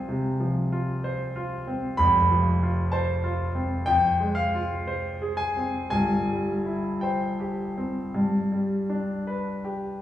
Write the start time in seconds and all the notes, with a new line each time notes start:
Already playing: C2 F3 C4 F4 C5 G#5 A#5
0.09 C3
0.40 F3
0.72 F4
1.04 C5
1.36 F4
1.68 C4
1.97 F1 F2 B5
2.31 F3
2.63 F4
2.92 C5 A5
3.24 F4
3.55 C4
3.86 F2 G5
4.20 G#3
4.35 F5
4.55 F4
4.87 C5
5.22 G#4
5.37 G#5
5.57 C4
5.90 G1 G2 G#5
6.30 G3
6.66 E4
7.01 C5 G5
7.40 G4
7.78 C4
8.14 G2
8.52 G3
8.89 D4
9.27 B4
9.65 G4